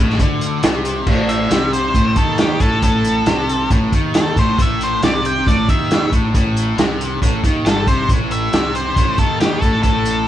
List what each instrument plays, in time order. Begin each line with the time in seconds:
Already playing: fingered electric bass A1
0.00 overdriven electric guitar A2
0.10 snare
0.19 fingered electric bass D2, overdriven electric guitar D3, kick, closed hi-hat
0.41 closed hi-hat
0.63 fingered electric bass C2, overdriven electric guitar C3, snare, closed hi-hat
0.85 closed hi-hat
1.06 fingered electric bass A1, overdriven electric guitar A2, kick, crash
1.29 lead electric guitar E5, closed hi-hat
1.51 fingered electric bass C2, overdriven electric guitar C3, snare, closed hi-hat
1.73 lead electric guitar C5, closed hi-hat
1.94 fingered electric bass A1, overdriven electric guitar A2, kick, closed hi-hat
2.16 fingered electric bass D#2, overdriven electric guitar D#3, lead electric guitar A4, kick, closed hi-hat
2.38 lead electric guitar G4, snare, closed hi-hat
2.60 fingered electric bass A1, overdriven electric guitar A2, lead electric guitar A4, kick, closed hi-hat
2.82 fingered electric bass A1, overdriven electric guitar A2, lead electric guitar A4, kick, closed hi-hat
3.05 closed hi-hat
3.26 fingered electric bass C2, overdriven electric guitar C3, snare, closed hi-hat
3.49 closed hi-hat
3.70 fingered electric bass A1, overdriven electric guitar A2, kick, closed hi-hat
3.92 fingered electric bass D#2, overdriven electric guitar D#3, kick, closed hi-hat
4.14 lead electric guitar A4, snare, closed hi-hat
4.36 fingered electric bass A1, overdriven electric guitar A2, lead electric guitar C5, kick, closed hi-hat
4.58 fingered electric bass A1, overdriven electric guitar A2, lead electric guitar E5, kick, closed hi-hat
4.81 lead electric guitar C5, closed hi-hat
5.03 fingered electric bass C2, overdriven electric guitar C3, lead electric guitar D5, snare, closed hi-hat
5.25 lead electric guitar G5, closed hi-hat
5.47 fingered electric bass A1, overdriven electric guitar A2, lead electric guitar D5, kick, closed hi-hat
5.68 fingered electric bass D#2, overdriven electric guitar D#3, lead electric guitar E5, kick, closed hi-hat
5.91 snare, closed hi-hat
6.12 fingered electric bass A1, overdriven electric guitar A2, kick, closed hi-hat
6.34 fingered electric bass A1, overdriven electric guitar A2, kick, closed hi-hat
6.57 closed hi-hat
6.78 fingered electric bass C2, overdriven electric guitar C3, snare, closed hi-hat
7.01 closed hi-hat
7.22 fingered electric bass A1, overdriven electric guitar A2, kick, closed hi-hat
7.44 fingered electric bass D#2, overdriven electric guitar D#3, kick, closed hi-hat
7.65 fingered electric bass G1, overdriven electric guitar G2, lead electric guitar A4, snare, closed hi-hat
7.87 fingered electric bass C2, overdriven electric guitar C3, lead electric guitar C5, kick, closed hi-hat
8.09 fingered electric bass A1, overdriven electric guitar A2, kick, closed hi-hat
8.31 lead electric guitar E5, closed hi-hat
8.53 fingered electric bass C2, overdriven electric guitar C3, snare, closed hi-hat
8.75 lead electric guitar C5, closed hi-hat
8.96 fingered electric bass A1, overdriven electric guitar A2, kick, closed hi-hat
9.18 fingered electric bass D#2, overdriven electric guitar D#3, lead electric guitar A4, kick, closed hi-hat
9.40 lead electric guitar G4, snare, closed hi-hat
9.61 fingered electric bass A1, overdriven electric guitar A2, lead electric guitar A4, kick, closed hi-hat
9.83 fingered electric bass A1, overdriven electric guitar A2, lead electric guitar A4, kick, closed hi-hat
10.05 closed hi-hat